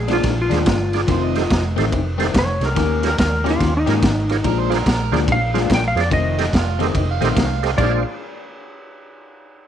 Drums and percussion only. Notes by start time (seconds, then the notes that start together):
0.08 snare, ride
0.23 kick, snare, ride
0.51 snare, ride
0.66 kick, snare, ride
0.93 snare, ride
1.08 kick, snare, ride
1.35 snare, ride
1.50 kick, snare, ride
1.78 snare, ride
1.93 kick, ride
2.20 snare, ride
2.34 kick, snare, ride
2.61 snare, ride
2.76 kick, snare, ride
3.03 snare, ride
3.18 kick, snare, ride
3.46 snare, ride
3.60 kick, snare, ride
3.87 snare, ride
4.02 kick, snare, ride
4.29 snare, ride
4.44 kick, ride
4.71 snare, ride
4.86 kick, snare, ride
5.14 snare, ride
5.28 kick, ride
5.55 snare, ride
5.70 kick, snare, ride
5.97 snare, ride
6.11 kick, ride
6.38 snare, ride
6.53 kick, snare, ride
6.80 snare, ride
6.95 kick, ride
7.22 snare, ride
7.37 kick, snare, ride
7.63 snare, ride
7.78 kick, crash